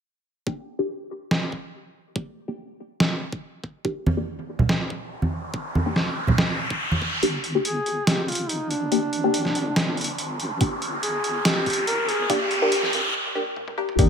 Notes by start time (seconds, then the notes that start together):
0.47 A#3 D4 G4, kick
0.79 A#3 D4 G4
1.31 snare
1.52 kick
2.16 A#3 D4 G4, kick
2.48 A#3 D4 G4
3.00 snare
3.33 kick
3.64 kick
3.85 A#3 D4 G4, kick, riser
4.07 high conga
4.17 A#3 D4 G4
4.59 high conga, low conga
4.69 snare
4.90 kick
5.22 high conga
5.54 kick
5.75 high conga
5.86 A#3 D4 G4
5.96 snare
6.27 high conga, low conga
6.38 snare
6.70 kick
6.91 high conga
7.02 kick
7.23 G1 A#3 D4 G4, closed hi-hat, riser
7.44 closed hi-hat
7.55 A#3 D4 G4
7.65 G#4, closed hi-hat
7.86 closed hi-hat
8.07 G1 G4, snare, closed hi-hat
8.23 G4
8.28 F4, closed hi-hat
8.32 closed hi-hat
8.35 closed hi-hat
8.49 D#4, closed hi-hat
8.71 D4, closed hi-hat
8.92 G1 A#3 D4 G4, closed hi-hat
9.13 closed hi-hat
9.24 A#3 D4 G4
9.34 closed hi-hat
9.45 snare
9.55 closed hi-hat
9.76 G1, snare, closed hi-hat
9.97 closed hi-hat
10.01 closed hi-hat
10.04 closed hi-hat
10.18 closed hi-hat
10.40 G1, closed hi-hat
10.61 G1 A#3 D4 G4, kick, closed hi-hat
10.82 closed hi-hat
11.03 G#4, closed hi-hat
11.24 closed hi-hat
11.45 G1 G4, snare, closed hi-hat
11.66 kick, closed hi-hat
11.70 closed hi-hat
11.73 closed hi-hat
11.87 A#4, closed hi-hat
12.09 G#4, closed hi-hat
12.30 G1 A#3 D4 G4, kick, closed hi-hat
12.51 closed hi-hat
12.62 A#3 D4 G4
12.72 closed hi-hat
12.83 snare
12.93 closed hi-hat
13.35 A#3 D4 G4
13.56 high tom
13.68 high tom
13.78 A#3 D4 G4
13.89 mid tom
13.99 G1 A#3 D4 D#4 G4, kick, closed hi-hat